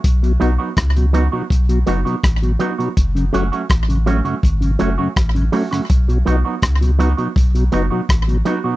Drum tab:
HH |xxx-xxx-xxxxxxxx|xxxxxxxxxxx-xxo-|xxx-xxxxxxx-xxx-|
SD |----r-------r---|----r-------r--r|----r-------r---|
BD |o---o---o---o---|o---o---o---o---|o---o---o---o---|